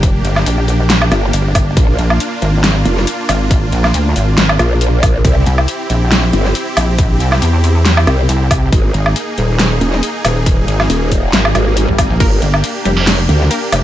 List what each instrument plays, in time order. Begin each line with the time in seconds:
Already playing: wobble bass F1, supersaw synth A#3 D4 G4
0.03 kick, closed hi-hat
0.25 wobble bass G1, closed hi-hat
0.36 snare, low woodblock
0.46 wobble bass A#1, closed hi-hat
0.68 open hi-hat
0.90 snare, closed hi-hat
1.02 low woodblock
1.12 wobble bass G1, closed hi-hat, low woodblock
1.33 wobble bass G1, closed hi-hat
1.55 kick, open hi-hat, low woodblock
1.77 wobble bass A#1, supersaw synth F4, kick, closed hi-hat
1.99 wobble bass A#1, closed hi-hat
2.10 low woodblock
2.20 closed hi-hat
2.42 wobble bass G#1, closed hi-hat
2.64 snare, closed hi-hat
2.85 wobble bass F1, closed hi-hat
2.97 snare
3.07 closed hi-hat
3.29 wobble bass G#1, open hi-hat, low woodblock
3.51 kick, closed hi-hat
3.72 wobble bass A#1, closed hi-hat
3.84 snare, low woodblock
3.94 wobble bass D2, closed hi-hat
4.16 wobble bass G#1, open hi-hat
4.38 wobble bass G#1, snare, closed hi-hat
4.49 low woodblock
4.59 wobble bass A#1, closed hi-hat, low woodblock
4.81 closed hi-hat
5.03 kick, open hi-hat, low woodblock
5.24 wobble bass C2, supersaw synth C4 E4 G4, kick, closed hi-hat
5.46 wobble bass C2, closed hi-hat
5.58 low woodblock
5.68 closed hi-hat
5.90 wobble bass A#1, closed hi-hat
6.12 snare, closed hi-hat
6.33 wobble bass G1, closed hi-hat
6.45 snare
6.55 closed hi-hat
6.77 wobble bass A#1, open hi-hat, low woodblock
6.98 kick, closed hi-hat
7.20 wobble bass C2, closed hi-hat
7.32 snare, low woodblock
7.42 wobble bass E2, closed hi-hat
7.64 open hi-hat
7.86 snare, closed hi-hat
7.97 low woodblock
8.07 wobble bass C2, closed hi-hat, low woodblock
8.29 wobble bass C2, closed hi-hat
8.51 kick, open hi-hat, low woodblock
8.72 wobble bass G#1, supersaw synth A#3 D#4 G#4, kick, closed hi-hat
8.94 wobble bass G#1, closed hi-hat
9.06 low woodblock
9.16 closed hi-hat
9.38 wobble bass D#1, closed hi-hat
9.59 snare, closed hi-hat
9.81 wobble bass D#1, closed hi-hat
9.93 snare
10.03 closed hi-hat
10.25 wobble bass D#1, open hi-hat, low woodblock
10.46 kick, closed hi-hat
10.68 wobble bass G#1, closed hi-hat
10.80 snare, low woodblock
10.90 wobble bass D#1, closed hi-hat
11.12 kick, open hi-hat
11.33 wobble bass G#1, snare, closed hi-hat, swell
11.45 low woodblock
11.55 wobble bass G#1, closed hi-hat, low woodblock
11.77 closed hi-hat
11.89 wobble bass G#1, kick
11.98 kick, open hi-hat, low woodblock
12.10 wobble bass A#1
12.20 wobble bass G1, synth pluck A#3 A#4, supersaw synth D4 G4, kick, closed hi-hat, crash
12.42 wobble bass G1, closed hi-hat
12.54 low woodblock
12.64 closed hi-hat, crash
12.85 wobble bass F1, synth pluck G3 G4, closed hi-hat
12.97 distorted electric guitar A#3 D4 G4
13.07 snare, closed hi-hat, crash
13.29 wobble bass D2, closed hi-hat
13.41 snare
13.51 synth pluck A#3 A#4, closed hi-hat, crash
13.72 wobble bass F1, open hi-hat, low woodblock